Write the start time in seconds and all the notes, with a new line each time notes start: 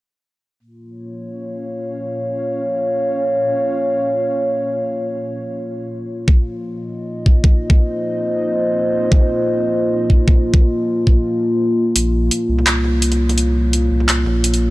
0.60 A#3
0.67 F4
0.90 C#5
1.19 F5
6.28 kick
6.70 D#5
7.26 kick
7.44 C5, kick
7.70 kick
9.12 kick
10.10 kick
10.28 kick
10.54 kick
11.07 kick
11.96 A#1, closed hi-hat
12.11 F5
12.31 closed hi-hat
12.44 C#5
12.49 C2
12.59 mid tom
12.67 clap, closed hi-hat
12.84 mid tom
13.02 closed hi-hat
13.12 closed hi-hat, mid tom
13.29 closed hi-hat, mid tom
13.38 closed hi-hat
13.73 closed hi-hat
13.91 C2
14.00 mid tom
14.09 clap, closed hi-hat
14.26 A#1, mid tom
14.44 closed hi-hat
14.54 closed hi-hat